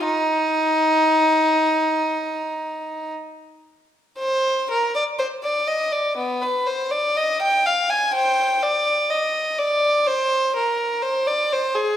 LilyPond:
\new Staff \with { instrumentName = "Violin" } { \time 4/4 \key c \minor \tempo 4 = 61 ees'2. r4 | c''8 bes'16 d''16 c''16 d''16 ees''16 d''16 b16 b'16 c''16 d''16 ees''16 g''16 f''16 aes''16 | <c'' g''>8 d''8 ees''8 d''8 c''8 bes'8 c''16 d''16 c''16 aes'16 | }